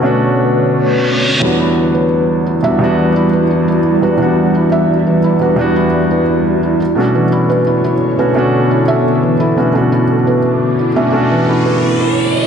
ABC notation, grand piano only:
X:1
M:4/4
L:1/8
Q:"Swing 16ths" 1/4=173
K:Em
V:1 name="Grand piano"
[B,,A,^CDF]6- [B,,A,CDF] z | [E,,G,B,DF]6- [E,,G,B,DF] [E,,G,B,DF] | [E,,G,B,DF]6- [E,,G,B,DF] [E,,G,B,DF] | [E,,G,B,DF]6- [E,,G,B,DF] [E,,G,B,DF] |
[E,,G,B,DF]6- [E,,G,B,DF] z | [B,,A,^CDF]6- [B,,A,CDF] [B,,A,CDF] | [B,,A,^CDF]6- [B,,A,CDF] [B,,A,CDF] | [B,,A,^CDF]6- [B,,A,CDF] [B,,A,CDF] |
[B,,A,^CDF]6 z2 |]